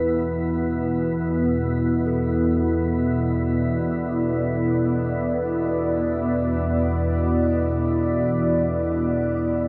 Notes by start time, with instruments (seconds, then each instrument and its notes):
Already playing: synth drone E2 B2, analog synth pad B3 E4 B4, singing bowl A4
2.06 singing bowl A4
2.85 analog synth pad D5